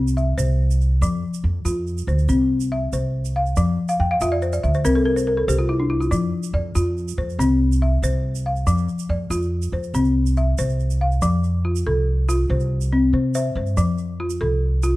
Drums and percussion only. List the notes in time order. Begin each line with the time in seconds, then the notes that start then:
0.08 shaker
0.18 shaker
0.39 shaker
0.71 shaker
0.81 shaker
1.02 shaker
1.34 shaker
1.66 shaker
1.87 shaker
1.98 shaker
2.08 shaker
2.19 shaker
2.29 shaker
2.60 shaker
2.93 shaker
3.25 shaker
3.46 shaker
3.56 shaker
3.89 shaker
4.21 shaker
4.42 shaker
4.53 shaker
4.64 shaker
4.74 shaker
4.85 shaker
5.17 shaker
5.49 shaker
6.02 shaker
6.12 shaker
6.43 shaker
6.76 shaker
6.97 shaker
7.08 shaker
7.30 shaker
7.40 shaker
7.72 shaker
8.03 shaker
8.35 shaker
8.56 shaker
8.67 shaker
8.78 shaker
8.88 shaker
8.99 shaker
9.31 shaker
9.42 shaker
9.62 shaker
9.83 shaker
9.94 shaker
10.05 shaker
10.26 shaker
10.37 shaker
10.58 shaker
10.69 shaker
10.80 shaker
10.90 shaker
11.12 shaker
11.22 shaker
11.44 shaker
11.76 shaker
12.29 shaker
12.60 shaker
12.81 shaker
13.35 shaker
13.66 shaker
13.77 shaker
13.98 shaker
14.30 shaker
14.83 shaker